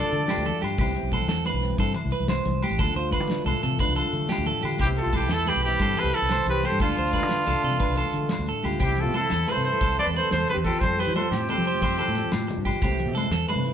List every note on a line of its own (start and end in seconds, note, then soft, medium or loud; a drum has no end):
0.00 0.30 D3 medium
0.00 0.13 A3 medium
0.00 0.78 D4 medium
0.00 0.77 F4 medium
0.00 0.27 A4 medium
0.00 0.60 A4 medium
0.00 0.59 D5 medium
0.04 high conga medium
0.04 low conga soft
0.12 0.25 D3 medium
0.12 0.78 A3 medium
0.12 closed hi-hat medium
0.21 low conga medium
0.28 0.47 F3 medium
0.28 0.45 G4 medium
0.28 snare medium
0.28 closed hi-hat medium
0.28 muted conga medium
0.28 high conga medium
0.28 low agogo medium
0.37 0.50 D2 medium
0.45 0.63 E3 medium
0.45 0.62 A4 medium
0.45 closed hi-hat soft
0.45 low conga loud
0.61 0.76 G2 medium
0.61 0.79 D3 medium
0.61 0.78 G4 medium
0.61 closed hi-hat soft
0.61 high conga medium
0.61 low agogo medium
0.69 low conga medium
0.78 0.98 C2 loud
0.78 1.12 C3 medium
0.78 1.27 B3 medium
0.78 0.95 C4 medium
0.78 1.78 E4 medium
0.78 1.11 G4 medium
0.78 kick medium
0.78 closed hi-hat medium
0.78 muted conga medium
0.78 low agogo medium
0.86 high conga medium
0.95 1.60 C4 medium
0.95 closed hi-hat soft
0.95 low conga medium
1.03 1.29 B1 medium
1.12 2.10 E3 medium
1.12 1.28 A4 medium
1.12 kick medium
1.12 closed hi-hat soft
1.12 high conga medium
1.12 low conga soft
1.12 low agogo medium
1.21 low conga medium
1.28 1.49 E2 medium
1.28 1.79 B3 medium
1.28 1.45 A4 medium
1.28 snare medium
1.28 closed hi-hat medium
1.28 muted conga medium
1.43 1.78 G2 medium
1.43 1.78 B4 medium
1.43 closed hi-hat soft
1.43 high conga medium
1.43 low conga medium
1.43 low agogo medium
1.54 1.73 B1 medium
1.61 1.77 C4 medium
1.61 snare soft
1.61 closed hi-hat soft
1.70 high conga medium
1.70 low conga medium
1.76 1.91 G2 medium
1.76 2.11 C3 medium
1.76 1.96 C4 medium
1.76 2.80 E4 medium
1.76 1.93 A4 medium
1.76 kick medium
1.76 closed hi-hat medium
1.76 muted conga medium
1.76 low agogo medium
1.88 low conga soft
1.95 muted clean electric guitar stroke medium
1.95 closed hi-hat soft
1.95 low conga medium
1.95 low agogo medium
2.04 2.12 C2 medium
2.04 high conga medium
2.04 low conga soft
2.11 2.77 E3 medium
2.11 2.28 B4 medium
2.11 closed hi-hat soft
2.11 low conga soft
2.20 2.40 C2 medium
2.20 low conga medium
2.28 2.44 A2 medium
2.28 2.61 C5 medium
2.28 snare medium
2.28 closed hi-hat medium
2.28 muted conga medium
2.28 high conga medium
2.28 low agogo medium
2.37 low conga soft
2.44 2.65 C2 medium
2.44 2.62 B2 medium
2.44 closed hi-hat medium
2.44 low conga loud
2.62 2.80 C3 medium
2.62 2.79 G4 medium
2.62 closed hi-hat medium
2.62 high conga medium
2.62 low agogo medium
2.71 2.77 A1 medium
2.71 low conga medium
2.79 2.92 D2 loud
2.79 3.79 D3 medium
2.79 3.30 D4 medium
2.79 2.95 F4 medium
2.79 2.95 A4 medium
2.79 kick medium
2.79 closed hi-hat medium
2.79 muted conga medium
2.79 low agogo medium
2.87 high conga medium
2.95 3.20 D2 medium
2.95 3.62 F4 medium
2.95 3.12 C5 medium
2.95 closed hi-hat medium
3.11 4.12 A3 medium
3.11 3.45 B4 medium
3.11 kick medium
3.11 closed hi-hat soft
3.11 high conga medium
3.11 low conga soft
3.11 low agogo medium
3.20 3.40 D3 medium
3.20 low conga medium
3.28 3.79 D4 medium
3.28 snare medium
3.28 closed hi-hat medium
3.28 muted conga medium
3.44 3.52 C2 medium
3.44 3.80 A2 medium
3.44 3.62 A4 medium
3.44 closed hi-hat soft
3.44 high conga loud
3.44 low conga medium
3.44 low agogo medium
3.63 3.76 C3 medium
3.63 3.80 F4 medium
3.63 3.79 A4 medium
3.63 snare soft
3.63 closed hi-hat soft
3.71 high conga medium
3.71 low conga medium
3.79 4.80 D3 medium
3.79 4.30 D4 medium
3.79 3.96 F4 medium
3.79 3.96 B4 medium
3.79 kick medium
3.79 closed hi-hat medium
3.79 muted conga medium
3.79 low agogo medium
3.88 4.01 C2 medium
3.88 low conga soft
3.95 4.64 F4 medium
3.95 4.28 A4 medium
3.95 closed hi-hat soft
3.95 low conga medium
3.95 low agogo medium
4.04 high conga medium
4.04 low conga soft
4.12 4.26 D3 medium
4.12 4.78 A3 medium
4.12 closed hi-hat soft
4.12 low conga soft
4.21 low conga medium
4.29 4.46 G4 medium
4.29 snare medium
4.29 closed hi-hat medium
4.29 muted conga medium
4.29 high conga medium
4.29 low agogo medium
4.38 4.51 D2 medium
4.38 low conga soft
4.45 4.80 A2 medium
4.45 4.62 A4 medium
4.45 closed hi-hat soft
4.45 low conga medium
4.61 4.77 D3 medium
4.61 4.79 G4 medium
4.61 closed hi-hat soft
4.61 high conga medium
4.65 4.79 F4 medium
4.65 low agogo medium
4.70 low conga medium
4.78 5.00 C2 loud
4.78 5.12 G4 medium
4.78 4.89 G4 medium
4.78 kick medium
4.78 closed hi-hat medium
4.78 muted conga medium
4.78 low agogo medium
4.83 5.15 C3 medium
4.83 5.32 B3 medium
4.83 4.99 C4 medium
4.83 4.90 E4 medium
4.83 5.81 E4 medium
4.87 high conga medium
4.97 5.13 A4 medium
4.97 closed hi-hat medium
5.01 5.15 F4 medium
5.06 5.30 B1 medium
5.12 6.13 E3 medium
5.12 5.33 E4 medium
5.12 5.34 G4 medium
5.12 5.29 A4 medium
5.12 kick medium
5.12 closed hi-hat soft
5.12 high conga medium
5.12 low conga soft
5.12 low agogo medium
5.20 low conga medium
5.28 5.50 E2 medium
5.28 5.46 A4 medium
5.28 snare medium
5.28 closed hi-hat medium
5.28 muted conga medium
5.33 5.80 B3 medium
5.33 5.49 E4 medium
5.33 5.50 A4 medium
5.46 5.81 G2 medium
5.46 5.65 E4 medium
5.46 5.63 G4 medium
5.46 5.79 B4 medium
5.46 closed hi-hat medium
5.46 high conga medium
5.46 low conga medium
5.46 low agogo medium
5.56 5.75 B1 medium
5.63 5.80 C4 medium
5.63 6.00 E4 medium
5.63 6.01 G4 medium
5.63 closed hi-hat soft
5.72 high conga medium
5.72 low conga medium
5.79 5.93 G2 medium
5.79 6.13 C3 medium
5.79 6.31 B3 medium
5.79 5.96 C4 medium
5.79 6.81 E4 medium
5.79 5.96 A4 medium
5.79 kick medium
5.79 closed hi-hat medium
5.79 muted conga medium
5.79 low agogo medium
5.87 low conga soft
5.94 6.64 C4 medium
5.94 6.13 A4 medium
5.94 closed hi-hat soft
5.94 low conga medium
5.99 6.16 G4 medium
5.99 6.16 B4 loud
5.99 low agogo medium
6.03 6.11 C2 medium
6.03 high conga medium
6.03 low conga soft
6.14 6.79 E3 medium
6.14 6.48 E4 medium
6.14 6.48 A4 loud
6.14 6.30 B4 medium
6.14 closed hi-hat soft
6.21 6.41 C2 medium
6.21 low conga medium
6.29 6.63 C5 medium
6.29 snare loud
6.29 closed hi-hat medium
6.29 muted conga medium
6.29 high conga medium
6.29 low agogo medium
6.38 low conga soft
6.46 6.66 C2 medium
6.46 6.79 G2 medium
6.46 6.67 G4 medium
6.46 6.67 B4 loud
6.46 closed hi-hat soft
6.46 low conga loud
6.62 6.80 C4 medium
6.62 6.80 G4 medium
6.62 6.81 A4 medium
6.62 6.81 C5 medium
6.62 closed hi-hat soft
6.62 high conga medium
6.62 low agogo medium
6.72 6.78 G2 medium
6.72 low conga medium
6.79 6.93 D2 loud
6.79 7.80 D3 medium
6.79 6.98 D4 medium
6.79 8.45 D4 medium
6.79 8.44 F4 loud
6.79 6.97 A4 medium
6.79 kick medium
6.79 closed hi-hat medium
6.79 muted conga loud
6.79 low conga soft
6.79 low agogo medium
6.89 high conga medium
6.96 7.23 D2 medium
6.96 7.07 B3 medium
6.96 7.13 C5 medium
6.96 closed hi-hat soft
6.96 low conga medium
7.07 7.29 D4 soft
7.13 8.14 A3 medium
7.13 7.46 B4 medium
7.13 kick medium
7.13 closed hi-hat soft
7.13 high conga medium
7.13 low agogo medium
7.21 7.42 D3 medium
7.21 low conga medium
7.29 7.64 D4 medium
7.29 snare medium
7.29 closed hi-hat medium
7.29 muted conga medium
7.46 7.54 C2 medium
7.46 7.81 A2 medium
7.46 7.63 A4 medium
7.46 closed hi-hat soft
7.46 high conga medium
7.46 low conga medium
7.46 low agogo medium
7.63 7.77 C3 medium
7.63 7.79 D4 medium
7.63 7.79 A4 medium
7.63 closed hi-hat soft
7.63 low conga soft
7.71 high conga medium
7.71 low conga medium
7.79 8.81 D3 medium
7.79 7.97 D4 medium
7.79 7.96 B4 medium
7.79 kick medium
7.79 closed hi-hat medium
7.79 muted conga medium
7.79 low agogo medium
7.89 8.02 C2 medium
7.96 8.32 D4 medium
7.96 8.29 A4 medium
7.96 closed hi-hat soft
7.96 low conga medium
7.96 low agogo medium
8.04 high conga medium
8.04 low conga soft
8.13 8.27 D3 medium
8.13 8.80 A3 medium
8.13 closed hi-hat medium
8.22 low conga medium
8.29 snare loud
8.29 closed hi-hat medium
8.29 muted conga medium
8.29 high conga medium
8.29 low conga soft
8.29 low agogo medium
8.33 8.79 D4 medium
8.39 8.52 D2 medium
8.46 8.79 A2 medium
8.46 8.64 A4 medium
8.46 closed hi-hat medium
8.63 8.77 D2 medium
8.63 8.79 F4 medium
8.63 8.79 G4 medium
8.63 closed hi-hat soft
8.63 high conga medium
8.63 low conga soft
8.63 low agogo medium
8.71 low conga medium
8.79 9.07 C2 loud
8.79 9.13 C3 medium
8.79 9.32 C4 medium
8.79 9.12 G4 medium
8.79 kick medium
8.79 closed hi-hat medium
8.79 muted conga loud
8.79 low agogo medium
8.84 9.04 E4 medium
8.84 9.02 G4 medium
8.88 high conga medium
8.96 9.64 E4 medium
8.96 9.16 A4 medium
8.96 closed hi-hat soft
8.96 low conga medium
9.02 9.25 C3 medium
9.02 9.17 F4 medium
9.14 10.14 E3 medium
9.14 9.30 A4 medium
9.14 9.52 A4 medium
9.14 closed hi-hat soft
9.14 muted conga medium
9.14 high conga loud
9.14 low agogo medium
9.19 9.53 E4 medium
9.19 low conga medium
9.30 9.44 E2 medium
9.30 9.83 C4 medium
9.30 9.47 A4 medium
9.30 snare medium
9.30 closed hi-hat medium
9.47 9.82 G2 medium
9.47 10.82 A3 medium
9.47 9.80 B4 medium
9.47 9.64 C5 medium
9.47 closed hi-hat soft
9.47 muted conga medium
9.47 low conga loud
9.47 low agogo medium
9.52 9.67 A4 medium
9.57 9.70 C3 medium
9.64 9.99 E4 medium
9.64 9.96 C5 medium
9.64 closed hi-hat soft
9.64 low conga soft
9.70 9.99 A4 medium
9.70 high conga medium
9.70 low conga medium
9.81 10.01 C2 medium
9.81 10.15 C3 medium
9.81 10.82 C4 medium
9.81 9.97 A4 medium
9.81 kick medium
9.81 closed hi-hat medium
9.81 muted conga medium
9.81 low agogo medium
9.90 low conga soft
9.98 10.15 A4 medium
9.98 10.06 D5 loud
9.98 closed hi-hat soft
9.98 low conga medium
9.98 low agogo medium
10.03 10.19 E2 medium
10.03 10.09 B4 medium
10.03 high conga medium
10.14 10.49 E3 medium
10.14 10.31 B4 medium
10.14 10.31 C5 medium
10.14 closed hi-hat soft
10.14 muted conga medium
10.20 10.33 A4 medium
10.24 low conga medium
10.31 10.45 E2 medium
10.31 10.49 C3 medium
10.31 10.47 C5 loud
10.31 10.64 C5 medium
10.31 snare medium
10.31 closed hi-hat medium
10.31 high conga medium
10.31 low agogo medium
10.36 10.50 A4 medium
10.48 10.64 D3 medium
10.48 10.57 B4 medium
10.48 closed hi-hat soft
10.48 low conga loud
10.53 10.69 E2 medium
10.53 10.59 G4 medium
10.64 10.81 E3 medium
10.64 10.86 F4 medium
10.64 10.81 G4 medium
10.64 10.81 A4 medium
10.64 kick medium
10.64 closed hi-hat medium
10.64 high conga medium
10.64 low agogo medium
10.75 low conga medium
10.80 11.79 F2 medium
10.80 11.08 F2 loud
10.80 11.15 F3 medium
10.80 11.47 G3 medium
10.80 11.31 C4 medium
10.80 10.98 G4 medium
10.80 11.01 C5 loud
10.80 kick medium
10.80 closed hi-hat medium
10.80 muted conga medium
10.80 low agogo medium
10.84 11.02 A4 medium
10.84 muted clean electric guitar stroke medium
10.91 high conga medium
10.98 12.65 G4 medium
10.98 11.16 G4 medium
10.98 11.15 B4 medium
10.98 11.15 C5 medium
10.98 closed hi-hat medium
10.98 low conga medium
11.07 11.26 F3 medium
11.15 12.14 F3 medium
11.15 11.31 F4 medium
11.15 11.30 A4 medium
11.15 11.47 C5 medium
11.15 closed hi-hat soft
11.15 muted conga medium
11.15 high conga medium
11.15 low agogo medium
11.24 low conga medium
11.31 11.44 A2 medium
11.31 11.63 C4 medium
11.31 12.63 C4 medium
11.31 12.61 G4 medium
11.31 snare medium
11.31 closed hi-hat medium
11.46 12.14 C3 medium
11.46 12.48 G3 medium
11.46 11.65 A4 medium
11.46 closed hi-hat soft
11.46 muted conga medium
11.46 high conga medium
11.46 low conga loud
11.51 low agogo medium
11.58 11.70 F3 medium
11.63 11.81 C4 medium
11.63 11.81 C5 medium
11.63 closed hi-hat soft
11.63 low conga soft
11.74 high conga medium
11.74 low conga medium
11.80 12.79 F2 medium
11.80 12.01 F2 medium
11.80 11.98 C5 medium
11.80 muted steel-string acoustic guitar stroke medium
11.80 kick medium
11.80 closed hi-hat medium
11.80 muted conga medium
11.80 low agogo medium
11.92 low conga soft
11.99 12.31 C4 medium
11.99 12.30 A4 medium
11.99 closed hi-hat soft
11.99 low conga loud
11.99 low agogo medium
12.08 12.21 A2 medium
12.08 high conga medium
12.15 12.80 F3 medium
12.15 snare soft
12.15 closed hi-hat soft
12.15 muted conga medium
12.24 low conga medium
12.32 12.45 A2 medium
12.32 12.80 C4 medium
12.32 snare medium
12.32 closed hi-hat medium
12.32 high conga medium
12.32 low agogo medium
12.48 12.80 C3 medium
12.48 12.83 G3 medium
12.48 muted clean electric guitar stroke medium
12.48 closed hi-hat medium
12.48 muted conga loud
12.48 low conga loud
12.58 12.70 G2 medium
12.58 low conga soft
12.65 12.81 G4 medium
12.65 12.80 G4 medium
12.65 kick medium
12.65 closed hi-hat soft
12.65 high conga medium
12.65 low agogo medium
12.76 low conga medium
12.82 13.07 C2 loud
12.82 13.16 C3 medium
12.82 13.16 E3 medium
12.82 13.48 A3 medium
12.82 13.32 C4 medium
12.82 13.14 G4 medium
12.82 kick medium
12.82 closed hi-hat medium
12.82 muted conga loud
12.82 low agogo medium
12.86 13.00 E4 medium
12.91 high conga medium
12.99 13.66 E4 medium
12.99 closed hi-hat soft
12.99 low conga loud
13.06 13.26 C3 medium
13.15 13.73 E3 medium
13.15 13.31 A4 medium
13.15 closed hi-hat soft
13.15 muted conga loud
13.15 high conga loud
13.15 low agogo medium
13.24 low conga medium
13.30 13.44 E2 medium
13.30 13.73 C4 medium
13.30 13.48 A4 medium
13.30 snare medium
13.30 closed hi-hat medium
13.48 13.73 G2 medium
13.48 13.73 A3 medium
13.48 13.73 B4 medium
13.48 closed hi-hat medium
13.48 muted conga loud
13.48 high conga loud
13.48 low conga loud
13.48 low agogo medium
13.55 13.69 C3 medium
13.64 13.73 E4 medium
13.64 closed hi-hat soft
13.64 low conga soft